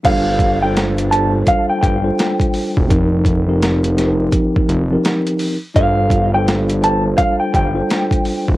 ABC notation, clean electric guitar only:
X:1
M:4/4
L:1/16
Q:"Swing 16ths" 1/4=84
K:Gm
V:1 name="Clean electric guitar"
f3 g z2 a z f g g6 | z16 | f3 g z2 a z f g g6 |]